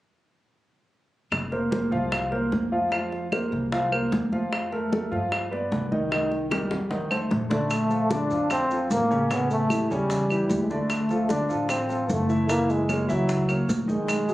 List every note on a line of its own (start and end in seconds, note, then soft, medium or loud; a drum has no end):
1.32 1.88 F1 medium
1.32 high bongo soft
1.32 high conga soft
1.32 claves medium
1.52 1.68 A#3 medium
1.52 1.69 A#4 medium
1.52 1.69 C5 medium
1.52 high bongo soft
1.52 high conga soft
1.71 1.88 A#3 medium
1.71 1.88 A#4 medium
1.71 1.89 C5 medium
1.71 high bongo soft
1.71 high conga medium
1.91 2.48 C2 medium
1.91 2.24 F3 medium
1.91 2.25 F4 medium
1.91 2.25 F5 medium
1.91 high bongo soft
1.91 high conga soft
2.12 high bongo medium
2.12 high conga soft
2.12 claves medium
2.31 2.64 A#3 medium
2.31 2.65 A#4 medium
2.31 2.65 C5 medium
2.31 high bongo soft
2.31 high conga soft
2.52 3.46 F2 medium
2.52 high bongo soft
2.52 low bongo medium
2.52 high conga medium
2.72 2.88 F3 medium
2.72 2.89 F4 medium
2.72 2.89 F5 medium
2.91 3.25 F3 medium
2.91 3.25 F4 medium
2.91 3.25 F5 medium
2.91 high bongo medium
2.91 high conga soft
2.91 claves medium
3.12 high bongo soft
3.12 high conga soft
3.32 3.65 A#3 medium
3.32 3.65 A#4 medium
3.32 3.65 C5 medium
3.32 high bongo medium
3.32 high conga medium
3.32 claves medium
3.52 4.08 C2 medium
3.52 high bongo soft
3.52 high conga soft
3.72 3.88 F3 medium
3.72 3.89 F4 medium
3.72 3.89 F5 medium
3.72 high bongo medium
3.72 high conga soft
3.92 4.25 A#3 medium
3.92 4.25 A#4 medium
3.92 4.25 C5 medium
3.92 high bongo soft
3.92 high conga soft
3.92 claves medium
4.12 5.06 F2 medium
4.12 high bongo soft
4.12 low bongo medium
4.12 high conga medium
4.32 4.65 F3 medium
4.32 4.65 F4 medium
4.32 4.65 F5 medium
4.32 high conga medium
4.53 high bongo medium
4.53 high conga soft
4.53 claves medium
4.72 4.88 A3 medium
4.72 4.88 A4 medium
4.72 4.89 A#4 medium
4.72 high bongo soft
4.72 high conga soft
4.92 5.08 A3 medium
4.92 5.08 A4 medium
4.92 5.09 A#4 medium
4.92 high bongo soft
4.92 high conga medium
5.11 5.68 G2 medium
5.11 5.44 F3 medium
5.11 5.44 F4 medium
5.11 5.44 F5 medium
5.11 high bongo soft
5.11 high conga soft
5.32 high bongo medium
5.32 high conga soft
5.32 claves medium
5.51 5.84 B3 medium
5.51 5.84 B4 medium
5.51 5.85 D5 medium
5.51 high bongo soft
5.51 high conga soft
5.72 6.65 C2 medium
5.72 high bongo soft
5.72 low bongo medium
5.72 high conga medium
5.92 6.08 D#3 medium
5.92 6.08 D#4 medium
5.92 6.08 D#5 medium
5.92 high conga medium
6.12 6.44 D#3 medium
6.12 6.44 D#4 medium
6.12 6.45 D#5 medium
6.12 high bongo medium
6.12 high conga soft
6.12 claves medium
6.32 high bongo soft
6.32 high conga soft
6.51 6.84 G3 medium
6.51 6.84 G4 medium
6.51 6.84 A#4 medium
6.51 high bongo medium
6.51 high conga soft
6.51 claves medium
6.71 7.27 F2 medium
6.71 high bongo medium
6.71 high conga soft
6.90 7.07 D#3 medium
6.90 7.07 D#4 medium
6.90 7.08 D#5 medium
6.90 low bongo medium
6.90 high conga soft
7.10 7.43 A3 medium
7.10 7.44 A4 medium
7.10 7.44 C5 medium
7.10 low bongo medium
7.10 high conga soft
7.10 claves medium
7.31 8.25 A#1 medium
7.31 low bongo medium
7.31 high conga medium
7.50 7.67 D3 medium
7.50 8.13 A3 medium
7.50 7.67 D4 medium
7.50 7.67 D5 medium
7.50 low bongo medium
7.50 high conga medium
7.70 high bongo medium
7.70 high conga soft
7.70 claves medium
7.70 maracas medium
7.90 8.07 F3 medium
7.90 8.07 F4 medium
7.90 8.07 A4 medium
7.90 high bongo soft
7.90 high conga soft
7.90 maracas soft
8.10 8.27 D3 medium
8.10 8.27 D4 medium
8.10 8.51 D4 medium
8.10 8.27 D5 medium
8.10 high bongo soft
8.10 high conga medium
8.10 maracas medium
8.30 8.87 F2 medium
8.30 8.63 F3 medium
8.30 8.64 F4 medium
8.30 8.64 A4 medium
8.30 high bongo soft
8.30 high conga soft
8.30 maracas soft
8.50 8.88 C4 medium
8.50 high bongo medium
8.50 high conga soft
8.50 claves medium
8.50 maracas medium
8.71 9.04 F3 medium
8.71 9.04 F4 medium
8.71 9.04 A4 medium
8.71 high bongo soft
8.71 high conga soft
8.71 maracas soft
8.90 9.84 A1 medium
8.90 9.33 A#3 medium
8.90 high bongo soft
8.90 low bongo medium
8.90 high conga medium
8.90 maracas medium
9.10 9.27 C#3 medium
9.10 9.27 C#4 medium
9.10 9.27 C#5 medium
9.10 maracas soft
9.30 9.63 C#3 medium
9.30 9.50 B3 medium
9.30 9.64 C#4 medium
9.30 9.64 C#5 medium
9.30 high bongo medium
9.30 high conga soft
9.30 claves medium
9.30 maracas medium
9.50 9.88 A3 medium
9.50 high bongo soft
9.50 high conga soft
9.50 maracas soft
9.70 9.87 E3 medium
9.70 9.87 E4 medium
9.70 9.88 G4 medium
9.70 high bongo soft
9.70 high conga medium
9.70 claves medium
9.70 maracas medium
9.90 10.46 E2 medium
9.90 10.24 C#3 medium
9.90 10.59 G3 medium
9.90 10.24 C#4 medium
9.90 10.24 C#5 medium
9.90 high bongo soft
9.90 high conga soft
9.90 maracas soft
10.10 high bongo medium
10.10 high conga soft
10.10 maracas medium
10.30 10.63 E3 medium
10.30 10.63 E4 medium
10.30 10.64 G4 medium
10.30 high bongo soft
10.30 high conga soft
10.30 claves medium
10.30 maracas soft
10.49 11.43 D2 medium
10.49 high bongo soft
10.49 low bongo medium
10.49 high conga medium
10.49 maracas medium
10.63 10.72 G#3 medium
10.70 11.03 D3 medium
10.70 11.29 A3 medium
10.70 11.03 D4 medium
10.70 11.03 D5 medium
10.70 high conga medium
10.70 maracas soft
10.90 high bongo medium
10.90 high conga soft
10.90 claves medium
10.90 maracas medium
11.09 11.26 F3 medium
11.09 11.27 F4 medium
11.09 11.27 A4 medium
11.09 high bongo soft
11.09 high conga soft
11.09 maracas soft
11.29 11.46 D3 medium
11.29 11.67 D4 medium
11.29 11.46 D4 medium
11.29 11.47 D5 medium
11.29 high bongo medium
11.29 high conga medium
11.29 maracas medium
11.49 12.05 A1 medium
11.49 11.82 F3 medium
11.49 11.82 F4 medium
11.49 11.83 A4 medium
11.49 high bongo soft
11.49 high conga soft
11.49 maracas soft
11.69 12.12 C4 medium
11.69 high bongo medium
11.69 high conga soft
11.69 claves medium
11.69 maracas medium
11.89 12.22 F3 medium
11.89 12.22 F4 medium
11.89 12.22 A4 medium
11.89 high bongo soft
11.89 high conga soft
11.89 maracas soft
12.09 13.03 F#1 medium
12.09 12.49 A3 medium
12.09 high bongo soft
12.09 low bongo medium
12.09 high conga medium
12.09 maracas medium
12.29 12.46 E3 medium
12.29 12.46 E4 medium
12.29 12.46 E5 medium
12.29 maracas soft
12.49 12.82 E3 medium
12.49 12.72 A#3 medium
12.49 12.82 E4 medium
12.49 12.82 E5 medium
12.49 high bongo medium
12.49 high conga soft
12.49 claves medium
12.49 maracas medium
12.69 13.11 G#3 medium
12.69 high bongo soft
12.69 high conga soft
12.69 maracas soft
12.89 13.06 A#3 medium
12.89 13.06 A#4 medium
12.89 13.06 C#5 medium
12.89 high bongo medium
12.89 high conga medium
12.89 claves medium
12.89 maracas medium
13.08 13.65 C#2 medium
13.08 13.41 E3 medium
13.08 13.62 F#3 medium
13.08 13.42 E4 medium
13.08 13.42 E5 medium
13.08 high bongo soft
13.08 high conga soft
13.08 maracas soft
13.29 high bongo medium
13.29 high conga soft
13.29 maracas medium
13.48 13.81 A#3 medium
13.48 13.81 A#4 medium
13.48 13.82 C#5 medium
13.48 high bongo soft
13.48 high conga soft
13.48 claves medium
13.48 maracas soft
13.69 14.34 B1 medium
13.69 high bongo soft
13.69 low bongo medium
13.69 high conga medium
13.69 maracas medium
13.87 14.21 D#3 medium
13.87 14.34 G#3 medium
13.87 14.21 D#4 medium
13.87 14.21 D#5 medium
13.87 high conga medium
13.87 maracas soft
14.08 high bongo medium
14.08 high conga soft
14.08 claves medium
14.08 maracas medium
14.28 14.34 F#3 medium
14.28 14.34 F#4 medium
14.28 14.34 G#4 medium
14.28 high bongo soft
14.28 high conga soft
14.28 maracas soft